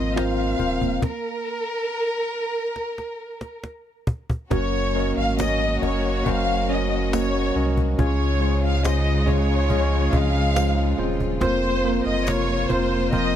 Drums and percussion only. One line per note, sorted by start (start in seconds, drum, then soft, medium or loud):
0.17 cajon slap loud
0.59 cajon bass medium
0.81 cajon bass medium
1.02 cajon bass loud
1.02 cajon slap medium
2.76 cajon slap soft
2.98 cajon slap soft
3.41 cajon slap medium
3.63 cajon slap medium
4.07 cajon bass loud
4.30 cajon bass medium
4.51 cajon bass loud
4.51 cajon bass medium
5.38 cajon slap loud
5.38 tambourine medium
5.83 cajon bass medium
6.26 cajon bass medium
7.13 cajon slap loud
7.13 tambourine medium
7.77 cajon bass medium
7.99 cajon bass loud
8.84 cajon slap loud
8.84 tambourine medium
9.27 cajon bass medium
9.70 cajon bass medium
10.13 cajon bass medium
10.56 cajon slap loud
10.56 tambourine medium
11.20 cajon bass medium
11.41 cajon bass loud
12.27 cajon slap loud
12.27 tambourine medium
12.70 cajon bass medium
13.13 cajon bass medium